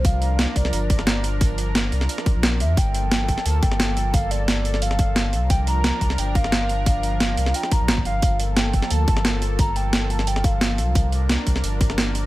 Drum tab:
HH |x-x-x-x-x-x-x-x-|x-x-x-x-x-x-x-x-|x-x-x-x-x-x-x-x-|x-x-x-x-x-x-x-x-|
SD |----o--o---oo---|----o--o-o--o---|----o--o---oo---|----o--o-o--o---|
BD |o-----o---o-----|o---------o-----|o-----o---o-----|o---------o-----|

HH |x-x-x-x-x-x-x-x-|x-x-x-x-x-x-x-x-|x-x-x-x-x-x-x-x-|x-x-x-x-x-x-x-x-|
SD |----o--o---oo---|----o--o-o--o---|----o--o---oo---|----o--o-o--o---|
BD |o-----o---o-----|o---------o--o--|o-----o---o-----|o---------o-----|

HH |x-x-x-x-x-x-x-x-|
SD |----o--o---oo---|
BD |o-----o---o-----|